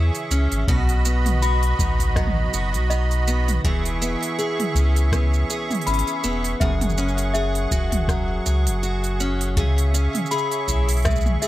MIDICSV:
0, 0, Header, 1, 6, 480
1, 0, Start_track
1, 0, Key_signature, 4, "major"
1, 0, Tempo, 740741
1, 441, Time_signature, 4, 2, 24, 8
1, 7437, End_track
2, 0, Start_track
2, 0, Title_t, "Accordion"
2, 0, Program_c, 0, 21
2, 0, Note_on_c, 0, 68, 80
2, 0, Note_on_c, 0, 76, 76
2, 0, Note_on_c, 0, 85, 90
2, 413, Note_off_c, 0, 68, 0
2, 414, Note_off_c, 0, 85, 0
2, 423, Note_off_c, 0, 76, 0
2, 436, Note_on_c, 0, 66, 80
2, 436, Note_on_c, 0, 75, 73
2, 438, Note_on_c, 0, 83, 95
2, 2339, Note_off_c, 0, 66, 0
2, 2339, Note_off_c, 0, 75, 0
2, 2340, Note_off_c, 0, 83, 0
2, 2358, Note_on_c, 0, 68, 85
2, 2360, Note_on_c, 0, 76, 78
2, 2361, Note_on_c, 0, 85, 87
2, 4260, Note_off_c, 0, 68, 0
2, 4261, Note_off_c, 0, 76, 0
2, 4289, Note_on_c, 0, 68, 80
2, 4290, Note_on_c, 0, 78, 75
2, 6186, Note_off_c, 0, 68, 0
2, 6186, Note_off_c, 0, 78, 0
2, 6203, Note_on_c, 0, 76, 76
2, 6206, Note_on_c, 0, 68, 78
2, 7437, Note_off_c, 0, 68, 0
2, 7437, Note_off_c, 0, 76, 0
2, 7437, Note_off_c, 0, 85, 0
2, 7437, End_track
3, 0, Start_track
3, 0, Title_t, "Celesta"
3, 0, Program_c, 1, 8
3, 575, Control_c, 1, 64, 127
3, 921, Note_on_c, 1, 83, 76
3, 1150, Note_off_c, 1, 83, 0
3, 1398, Note_on_c, 1, 75, 85
3, 1549, Note_off_c, 1, 75, 0
3, 1879, Note_on_c, 1, 75, 99
3, 2109, Note_off_c, 1, 75, 0
3, 2369, Control_c, 1, 64, 0
3, 2478, Control_c, 1, 64, 127
3, 3801, Note_on_c, 1, 83, 76
3, 4030, Note_off_c, 1, 83, 0
3, 4278, Note_on_c, 1, 76, 81
3, 4288, Control_c, 1, 64, 0
3, 4396, Control_c, 1, 64, 127
3, 4428, Note_off_c, 1, 76, 0
3, 4754, Note_on_c, 1, 76, 103
3, 4987, Note_off_c, 1, 76, 0
3, 6208, Control_c, 1, 64, 0
3, 6306, Control_c, 1, 64, 127
3, 6681, Note_on_c, 1, 83, 76
3, 6910, Note_off_c, 1, 83, 0
3, 7159, Note_on_c, 1, 76, 93
3, 7309, Note_off_c, 1, 76, 0
3, 7399, Note_on_c, 1, 76, 80
3, 7437, Note_off_c, 1, 76, 0
3, 7437, End_track
4, 0, Start_track
4, 0, Title_t, "Steel-string acoustic guitar"
4, 0, Program_c, 2, 25
4, 0, Note_on_c, 2, 49, 92
4, 0, Note_on_c, 2, 52, 71
4, 0, Note_on_c, 2, 61, 66
4, 0, Note_on_c, 2, 64, 62
4, 0, Note_on_c, 2, 68, 65
4, 195, Note_off_c, 2, 61, 0
4, 203, Note_on_c, 2, 61, 66
4, 440, Note_off_c, 2, 49, 0
4, 440, Note_off_c, 2, 68, 0
4, 442, Note_on_c, 2, 47, 83
4, 446, Note_on_c, 2, 66, 72
4, 494, Note_off_c, 2, 52, 0
4, 494, Note_off_c, 2, 64, 0
4, 495, Note_off_c, 2, 61, 0
4, 683, Note_on_c, 2, 59, 63
4, 915, Note_off_c, 2, 66, 0
4, 923, Note_on_c, 2, 66, 75
4, 1164, Note_on_c, 2, 63, 64
4, 1404, Note_on_c, 2, 54, 74
4, 1635, Note_off_c, 2, 66, 0
4, 1643, Note_on_c, 2, 66, 65
4, 1874, Note_off_c, 2, 63, 0
4, 1881, Note_on_c, 2, 63, 64
4, 2120, Note_off_c, 2, 59, 0
4, 2122, Note_on_c, 2, 59, 68
4, 2360, Note_off_c, 2, 54, 0
4, 2361, Note_off_c, 2, 47, 0
4, 2362, Note_off_c, 2, 66, 0
4, 2362, Note_on_c, 2, 52, 84
4, 2365, Note_on_c, 2, 68, 69
4, 2415, Note_off_c, 2, 63, 0
4, 2600, Note_off_c, 2, 59, 0
4, 2603, Note_on_c, 2, 59, 65
4, 2840, Note_off_c, 2, 68, 0
4, 2842, Note_on_c, 2, 68, 73
4, 3082, Note_on_c, 2, 61, 67
4, 3314, Note_off_c, 2, 59, 0
4, 3322, Note_on_c, 2, 59, 72
4, 3560, Note_off_c, 2, 68, 0
4, 3562, Note_on_c, 2, 68, 66
4, 3799, Note_off_c, 2, 61, 0
4, 3802, Note_on_c, 2, 61, 68
4, 4034, Note_off_c, 2, 59, 0
4, 4042, Note_on_c, 2, 59, 68
4, 4281, Note_off_c, 2, 52, 0
4, 4283, Note_on_c, 2, 42, 90
4, 4284, Note_off_c, 2, 68, 0
4, 4287, Note_on_c, 2, 68, 70
4, 4335, Note_off_c, 2, 59, 0
4, 4522, Note_off_c, 2, 61, 0
4, 4522, Note_on_c, 2, 61, 65
4, 4758, Note_off_c, 2, 68, 0
4, 4760, Note_on_c, 2, 68, 71
4, 5001, Note_on_c, 2, 66, 65
4, 5243, Note_on_c, 2, 54, 76
4, 5479, Note_off_c, 2, 68, 0
4, 5482, Note_on_c, 2, 68, 70
4, 5714, Note_off_c, 2, 66, 0
4, 5722, Note_on_c, 2, 66, 64
4, 5961, Note_off_c, 2, 61, 0
4, 5964, Note_on_c, 2, 61, 65
4, 6201, Note_on_c, 2, 49, 90
4, 6202, Note_off_c, 2, 42, 0
4, 6202, Note_off_c, 2, 68, 0
4, 6205, Note_on_c, 2, 68, 74
4, 6255, Note_off_c, 2, 66, 0
4, 6256, Note_off_c, 2, 54, 0
4, 6439, Note_off_c, 2, 61, 0
4, 6442, Note_on_c, 2, 61, 67
4, 6675, Note_off_c, 2, 68, 0
4, 6683, Note_on_c, 2, 68, 76
4, 6923, Note_on_c, 2, 64, 63
4, 7162, Note_on_c, 2, 56, 78
4, 7394, Note_off_c, 2, 68, 0
4, 7402, Note_on_c, 2, 68, 64
4, 7437, Note_off_c, 2, 49, 0
4, 7437, Note_off_c, 2, 56, 0
4, 7437, Note_off_c, 2, 61, 0
4, 7437, Note_off_c, 2, 64, 0
4, 7437, Note_off_c, 2, 68, 0
4, 7437, End_track
5, 0, Start_track
5, 0, Title_t, "Sub bass"
5, 0, Program_c, 3, 38
5, 0, Note_on_c, 3, 40, 91
5, 69, Note_off_c, 3, 40, 0
5, 197, Note_on_c, 3, 37, 94
5, 307, Note_off_c, 3, 37, 0
5, 334, Note_on_c, 3, 32, 99
5, 420, Note_off_c, 3, 32, 0
5, 439, Note_on_c, 3, 35, 101
5, 1127, Note_off_c, 3, 35, 0
5, 1161, Note_on_c, 3, 33, 81
5, 1608, Note_off_c, 3, 33, 0
5, 1642, Note_on_c, 3, 30, 93
5, 1776, Note_on_c, 3, 35, 76
5, 1785, Note_off_c, 3, 30, 0
5, 2328, Note_off_c, 3, 35, 0
5, 2362, Note_on_c, 3, 28, 83
5, 2694, Note_off_c, 3, 28, 0
5, 3078, Note_on_c, 3, 37, 85
5, 3526, Note_off_c, 3, 37, 0
5, 3803, Note_on_c, 3, 32, 104
5, 3910, Note_off_c, 3, 32, 0
5, 4043, Note_on_c, 3, 28, 93
5, 4241, Note_off_c, 3, 28, 0
5, 4281, Note_on_c, 3, 30, 102
5, 4968, Note_off_c, 3, 30, 0
5, 4998, Note_on_c, 3, 28, 88
5, 5446, Note_off_c, 3, 28, 0
5, 5484, Note_on_c, 3, 37, 93
5, 5619, Note_on_c, 3, 30, 83
5, 5628, Note_off_c, 3, 37, 0
5, 6199, Note_on_c, 3, 37, 90
5, 6209, Note_off_c, 3, 30, 0
5, 6532, Note_off_c, 3, 37, 0
5, 6921, Note_on_c, 3, 35, 88
5, 7368, Note_off_c, 3, 35, 0
5, 7437, End_track
6, 0, Start_track
6, 0, Title_t, "Drums"
6, 95, Note_on_c, 9, 46, 30
6, 97, Note_on_c, 9, 82, 33
6, 159, Note_off_c, 9, 46, 0
6, 161, Note_off_c, 9, 82, 0
6, 202, Note_on_c, 9, 82, 74
6, 267, Note_off_c, 9, 82, 0
6, 334, Note_on_c, 9, 46, 47
6, 337, Note_on_c, 9, 82, 34
6, 399, Note_off_c, 9, 46, 0
6, 401, Note_off_c, 9, 82, 0
6, 438, Note_on_c, 9, 36, 125
6, 442, Note_on_c, 9, 82, 44
6, 503, Note_off_c, 9, 36, 0
6, 507, Note_off_c, 9, 82, 0
6, 575, Note_on_c, 9, 46, 42
6, 578, Note_on_c, 9, 82, 32
6, 640, Note_off_c, 9, 46, 0
6, 642, Note_off_c, 9, 82, 0
6, 682, Note_on_c, 9, 82, 79
6, 747, Note_off_c, 9, 82, 0
6, 816, Note_on_c, 9, 45, 83
6, 816, Note_on_c, 9, 46, 55
6, 818, Note_on_c, 9, 82, 33
6, 881, Note_off_c, 9, 45, 0
6, 881, Note_off_c, 9, 46, 0
6, 883, Note_off_c, 9, 82, 0
6, 923, Note_on_c, 9, 82, 46
6, 988, Note_off_c, 9, 82, 0
6, 1054, Note_on_c, 9, 46, 42
6, 1119, Note_off_c, 9, 46, 0
6, 1161, Note_on_c, 9, 36, 113
6, 1164, Note_on_c, 9, 82, 80
6, 1225, Note_off_c, 9, 36, 0
6, 1228, Note_off_c, 9, 82, 0
6, 1293, Note_on_c, 9, 36, 65
6, 1296, Note_on_c, 9, 46, 55
6, 1298, Note_on_c, 9, 82, 37
6, 1358, Note_off_c, 9, 36, 0
6, 1361, Note_off_c, 9, 46, 0
6, 1363, Note_off_c, 9, 82, 0
6, 1400, Note_on_c, 9, 36, 125
6, 1401, Note_on_c, 9, 37, 76
6, 1403, Note_on_c, 9, 82, 44
6, 1464, Note_off_c, 9, 36, 0
6, 1466, Note_off_c, 9, 37, 0
6, 1468, Note_off_c, 9, 82, 0
6, 1469, Note_on_c, 9, 45, 80
6, 1534, Note_off_c, 9, 45, 0
6, 1644, Note_on_c, 9, 82, 81
6, 1708, Note_off_c, 9, 82, 0
6, 1776, Note_on_c, 9, 46, 51
6, 1779, Note_on_c, 9, 82, 32
6, 1841, Note_off_c, 9, 46, 0
6, 1843, Note_off_c, 9, 82, 0
6, 1885, Note_on_c, 9, 82, 44
6, 1949, Note_off_c, 9, 82, 0
6, 2015, Note_on_c, 9, 46, 29
6, 2017, Note_on_c, 9, 82, 30
6, 2080, Note_off_c, 9, 46, 0
6, 2082, Note_off_c, 9, 82, 0
6, 2123, Note_on_c, 9, 82, 72
6, 2188, Note_off_c, 9, 82, 0
6, 2257, Note_on_c, 9, 45, 70
6, 2257, Note_on_c, 9, 46, 50
6, 2259, Note_on_c, 9, 82, 33
6, 2322, Note_off_c, 9, 45, 0
6, 2322, Note_off_c, 9, 46, 0
6, 2324, Note_off_c, 9, 82, 0
6, 2361, Note_on_c, 9, 36, 109
6, 2365, Note_on_c, 9, 82, 43
6, 2426, Note_off_c, 9, 36, 0
6, 2430, Note_off_c, 9, 82, 0
6, 2497, Note_on_c, 9, 46, 47
6, 2499, Note_on_c, 9, 82, 31
6, 2562, Note_off_c, 9, 46, 0
6, 2564, Note_off_c, 9, 82, 0
6, 2605, Note_on_c, 9, 82, 74
6, 2670, Note_off_c, 9, 82, 0
6, 2739, Note_on_c, 9, 46, 53
6, 2741, Note_on_c, 9, 82, 32
6, 2803, Note_off_c, 9, 46, 0
6, 2806, Note_off_c, 9, 82, 0
6, 2847, Note_on_c, 9, 82, 43
6, 2911, Note_off_c, 9, 82, 0
6, 2979, Note_on_c, 9, 45, 82
6, 2979, Note_on_c, 9, 46, 45
6, 3044, Note_off_c, 9, 45, 0
6, 3044, Note_off_c, 9, 46, 0
6, 3078, Note_on_c, 9, 36, 61
6, 3085, Note_on_c, 9, 82, 71
6, 3143, Note_off_c, 9, 36, 0
6, 3150, Note_off_c, 9, 82, 0
6, 3216, Note_on_c, 9, 46, 59
6, 3218, Note_on_c, 9, 82, 32
6, 3281, Note_off_c, 9, 46, 0
6, 3283, Note_off_c, 9, 82, 0
6, 3319, Note_on_c, 9, 36, 115
6, 3322, Note_on_c, 9, 37, 73
6, 3324, Note_on_c, 9, 82, 41
6, 3384, Note_off_c, 9, 36, 0
6, 3387, Note_off_c, 9, 37, 0
6, 3389, Note_off_c, 9, 82, 0
6, 3458, Note_on_c, 9, 82, 28
6, 3522, Note_off_c, 9, 82, 0
6, 3564, Note_on_c, 9, 82, 70
6, 3629, Note_off_c, 9, 82, 0
6, 3697, Note_on_c, 9, 45, 90
6, 3697, Note_on_c, 9, 46, 25
6, 3699, Note_on_c, 9, 82, 33
6, 3722, Note_off_c, 9, 46, 0
6, 3722, Note_on_c, 9, 46, 31
6, 3762, Note_off_c, 9, 45, 0
6, 3764, Note_off_c, 9, 82, 0
6, 3767, Note_off_c, 9, 46, 0
6, 3767, Note_on_c, 9, 46, 35
6, 3803, Note_off_c, 9, 46, 0
6, 3803, Note_on_c, 9, 46, 39
6, 3805, Note_on_c, 9, 82, 44
6, 3847, Note_off_c, 9, 46, 0
6, 3847, Note_on_c, 9, 46, 41
6, 3870, Note_off_c, 9, 82, 0
6, 3881, Note_off_c, 9, 46, 0
6, 3881, Note_on_c, 9, 46, 50
6, 3935, Note_off_c, 9, 46, 0
6, 3935, Note_on_c, 9, 46, 30
6, 3937, Note_on_c, 9, 82, 29
6, 4000, Note_off_c, 9, 46, 0
6, 4002, Note_off_c, 9, 82, 0
6, 4041, Note_on_c, 9, 82, 79
6, 4106, Note_off_c, 9, 82, 0
6, 4175, Note_on_c, 9, 46, 50
6, 4177, Note_on_c, 9, 82, 32
6, 4240, Note_off_c, 9, 46, 0
6, 4242, Note_off_c, 9, 82, 0
6, 4281, Note_on_c, 9, 36, 113
6, 4283, Note_on_c, 9, 82, 39
6, 4346, Note_off_c, 9, 36, 0
6, 4348, Note_off_c, 9, 82, 0
6, 4415, Note_on_c, 9, 45, 88
6, 4415, Note_on_c, 9, 46, 50
6, 4417, Note_on_c, 9, 82, 32
6, 4468, Note_off_c, 9, 82, 0
6, 4468, Note_on_c, 9, 82, 25
6, 4480, Note_off_c, 9, 45, 0
6, 4480, Note_off_c, 9, 46, 0
6, 4521, Note_off_c, 9, 82, 0
6, 4521, Note_on_c, 9, 82, 72
6, 4586, Note_off_c, 9, 82, 0
6, 4589, Note_on_c, 9, 82, 16
6, 4652, Note_on_c, 9, 46, 56
6, 4654, Note_off_c, 9, 82, 0
6, 4654, Note_on_c, 9, 82, 34
6, 4717, Note_off_c, 9, 46, 0
6, 4719, Note_off_c, 9, 82, 0
6, 4760, Note_on_c, 9, 82, 41
6, 4825, Note_off_c, 9, 82, 0
6, 4893, Note_on_c, 9, 46, 46
6, 4958, Note_off_c, 9, 46, 0
6, 4998, Note_on_c, 9, 36, 89
6, 5001, Note_on_c, 9, 82, 74
6, 5063, Note_off_c, 9, 36, 0
6, 5065, Note_off_c, 9, 82, 0
6, 5133, Note_on_c, 9, 45, 83
6, 5133, Note_on_c, 9, 46, 60
6, 5136, Note_on_c, 9, 36, 54
6, 5136, Note_on_c, 9, 82, 33
6, 5198, Note_off_c, 9, 45, 0
6, 5198, Note_off_c, 9, 46, 0
6, 5200, Note_off_c, 9, 82, 0
6, 5201, Note_off_c, 9, 36, 0
6, 5236, Note_on_c, 9, 36, 108
6, 5241, Note_on_c, 9, 37, 79
6, 5243, Note_on_c, 9, 82, 43
6, 5301, Note_off_c, 9, 36, 0
6, 5306, Note_off_c, 9, 37, 0
6, 5308, Note_off_c, 9, 82, 0
6, 5483, Note_on_c, 9, 82, 68
6, 5547, Note_off_c, 9, 82, 0
6, 5617, Note_on_c, 9, 46, 63
6, 5619, Note_on_c, 9, 82, 32
6, 5682, Note_off_c, 9, 46, 0
6, 5684, Note_off_c, 9, 82, 0
6, 5724, Note_on_c, 9, 82, 43
6, 5788, Note_off_c, 9, 82, 0
6, 5856, Note_on_c, 9, 46, 34
6, 5858, Note_on_c, 9, 82, 29
6, 5920, Note_off_c, 9, 46, 0
6, 5923, Note_off_c, 9, 82, 0
6, 5963, Note_on_c, 9, 82, 73
6, 6028, Note_off_c, 9, 82, 0
6, 6097, Note_on_c, 9, 46, 57
6, 6099, Note_on_c, 9, 82, 30
6, 6162, Note_off_c, 9, 46, 0
6, 6164, Note_off_c, 9, 82, 0
6, 6200, Note_on_c, 9, 36, 115
6, 6203, Note_on_c, 9, 82, 43
6, 6265, Note_off_c, 9, 36, 0
6, 6268, Note_off_c, 9, 82, 0
6, 6337, Note_on_c, 9, 46, 49
6, 6340, Note_on_c, 9, 82, 33
6, 6402, Note_off_c, 9, 46, 0
6, 6404, Note_off_c, 9, 82, 0
6, 6445, Note_on_c, 9, 82, 77
6, 6510, Note_off_c, 9, 82, 0
6, 6576, Note_on_c, 9, 45, 81
6, 6576, Note_on_c, 9, 46, 61
6, 6578, Note_on_c, 9, 82, 31
6, 6641, Note_off_c, 9, 45, 0
6, 6641, Note_off_c, 9, 46, 0
6, 6643, Note_off_c, 9, 82, 0
6, 6648, Note_on_c, 9, 82, 24
6, 6683, Note_off_c, 9, 82, 0
6, 6683, Note_on_c, 9, 82, 46
6, 6727, Note_off_c, 9, 82, 0
6, 6727, Note_on_c, 9, 82, 22
6, 6792, Note_off_c, 9, 82, 0
6, 6814, Note_on_c, 9, 46, 50
6, 6816, Note_on_c, 9, 82, 32
6, 6878, Note_off_c, 9, 46, 0
6, 6881, Note_off_c, 9, 82, 0
6, 6920, Note_on_c, 9, 36, 54
6, 6922, Note_on_c, 9, 82, 77
6, 6984, Note_off_c, 9, 36, 0
6, 6987, Note_off_c, 9, 82, 0
6, 7054, Note_on_c, 9, 46, 58
6, 7056, Note_on_c, 9, 82, 35
6, 7071, Note_off_c, 9, 46, 0
6, 7071, Note_on_c, 9, 46, 48
6, 7080, Note_off_c, 9, 46, 0
6, 7080, Note_on_c, 9, 46, 39
6, 7107, Note_off_c, 9, 46, 0
6, 7107, Note_on_c, 9, 46, 33
6, 7121, Note_off_c, 9, 82, 0
6, 7124, Note_off_c, 9, 46, 0
6, 7124, Note_on_c, 9, 46, 24
6, 7143, Note_off_c, 9, 46, 0
6, 7143, Note_on_c, 9, 46, 20
6, 7161, Note_on_c, 9, 37, 84
6, 7163, Note_on_c, 9, 82, 42
6, 7164, Note_on_c, 9, 36, 123
6, 7197, Note_off_c, 9, 82, 0
6, 7197, Note_on_c, 9, 82, 32
6, 7208, Note_off_c, 9, 46, 0
6, 7226, Note_off_c, 9, 37, 0
6, 7229, Note_off_c, 9, 36, 0
6, 7230, Note_off_c, 9, 82, 0
6, 7230, Note_on_c, 9, 82, 28
6, 7263, Note_off_c, 9, 82, 0
6, 7263, Note_on_c, 9, 82, 23
6, 7295, Note_on_c, 9, 45, 72
6, 7297, Note_off_c, 9, 82, 0
6, 7297, Note_on_c, 9, 82, 27
6, 7360, Note_off_c, 9, 45, 0
6, 7362, Note_off_c, 9, 82, 0
6, 7402, Note_on_c, 9, 82, 73
6, 7437, Note_off_c, 9, 82, 0
6, 7437, End_track
0, 0, End_of_file